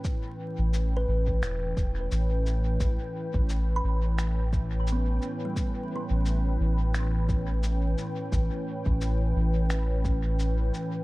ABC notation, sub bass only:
X:1
M:4/4
L:1/16
Q:"Swing 16ths" 1/4=87
K:Amix
V:1 name="Sub bass" clef=bass
z3 A,,,3 A,,,2 E,,,2 E,,,2 A,,,4 | A,,, z2 A,,,3 A,,,8 z2 | z3 A,,,3 A,,,8 z2 | A,,, z2 A,,,3 A,,,8 z2 |]